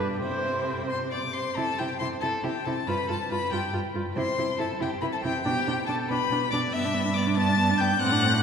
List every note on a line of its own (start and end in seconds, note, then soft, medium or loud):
0.00 0.24 G2 medium
0.00 0.22 D4 medium
0.00 0.21 G5 soft
0.22 1.37 C3 medium
0.22 0.89 E4 soft
0.22 0.88 C5 medium
0.22 0.89 G5 soft
0.89 1.11 C5 medium
0.89 0.97 C6 medium
1.11 1.20 D5 medium
1.11 1.34 D6 medium
1.33 1.56 C5 medium
1.33 1.58 C6 medium
1.56 1.65 C3 medium
1.56 1.65 E4 medium
1.56 1.80 A4 medium
1.56 1.80 A5 medium
1.78 1.88 C3 medium
1.78 1.87 E4 soft
1.78 1.99 G4 medium
1.78 1.98 G5 medium
1.99 2.09 C3 medium
1.99 2.08 E4 soft
1.99 2.07 C5 medium
1.99 2.07 C6 medium
2.21 2.30 C3 medium
2.21 2.29 E4 soft
2.21 2.45 A4 medium
2.21 2.29 A5 medium
2.43 2.51 C3 medium
2.43 2.51 E4 soft
2.43 2.64 G4 medium
2.43 2.66 G5 medium
2.64 2.74 C3 medium
2.64 2.74 E4 soft
2.64 2.72 A4 medium
2.64 2.89 A5 medium
2.87 2.95 G2 medium
2.87 2.96 F4 medium
2.87 3.08 B4 medium
2.87 3.09 B5 medium
3.08 3.16 G2 medium
3.08 3.17 F4 soft
3.08 3.16 A4 medium
3.08 3.31 A5 medium
3.30 3.38 G2 soft
3.30 3.39 F4 soft
3.30 3.53 B4 medium
3.30 3.52 B5 medium
3.51 3.59 G2 medium
3.51 3.60 F4 soft
3.51 3.73 G4 medium
3.51 3.73 G5 medium
3.73 3.82 G2 medium
3.73 3.81 F4 soft
3.94 4.02 G2 medium
3.94 4.03 F4 soft
4.15 4.24 C3 medium
4.15 4.25 E4 medium
4.15 4.60 C5 medium
4.15 4.57 C6 medium
4.38 4.46 C3 medium
4.38 4.46 E4 soft
4.58 4.67 C3 medium
4.58 4.67 E4 medium
4.58 4.82 A4 medium
4.58 4.68 A5 medium
4.80 4.89 C3 medium
4.80 4.88 E4 medium
4.80 5.02 G4 medium
4.80 4.90 G5 medium
5.01 5.10 C3 medium
5.01 5.10 E4 medium
5.01 5.07 B4 medium
5.01 5.06 B5 medium
5.12 5.24 A4 medium
5.12 5.17 A5 medium
5.22 5.32 C3 medium
5.22 5.32 E4 medium
5.22 5.44 G4 medium
5.22 5.42 G5 medium
5.43 5.54 B2 medium
5.43 5.53 D4 medium
5.43 5.86 G4 medium
5.43 5.86 G5 medium
5.67 5.75 B2 medium
5.67 5.75 D4 medium
5.86 5.96 B2 medium
5.86 5.97 D4 soft
5.86 6.10 A4 medium
5.86 5.94 A5 medium
6.09 6.18 B2 medium
6.09 6.19 D4 medium
6.09 6.50 B4 medium
6.09 6.51 B5 medium
6.30 6.38 B2 medium
6.30 6.40 D4 medium
6.50 6.60 B2 medium
6.50 6.61 D4 medium
6.50 6.75 D5 medium
6.50 6.59 D6 medium
6.72 7.98 G2 medium
6.72 6.86 B3 medium
6.72 7.16 E5 medium
6.72 7.16 E6 loud
6.85 6.96 D4 medium
6.95 7.07 B3 medium
7.05 7.15 D4 medium
7.14 7.29 B3 medium
7.14 7.25 D5 medium
7.14 7.37 D6 medium
7.27 7.39 D4 medium
7.35 7.50 B3 medium
7.35 7.82 A5 loud
7.35 7.79 A6 medium
7.49 7.59 D4 medium
7.59 7.72 B3 medium
7.71 7.83 D4 medium
7.77 8.00 G5 medium
7.77 8.01 G6 medium
7.81 7.93 B3 medium
7.92 8.00 D4 medium
8.00 8.43 A2 medium
8.00 8.14 C4 medium
8.00 8.43 F#5 loud
8.00 8.43 F#6 loud
8.12 8.25 D4 medium
8.23 8.35 C4 medium
8.33 8.43 D4 medium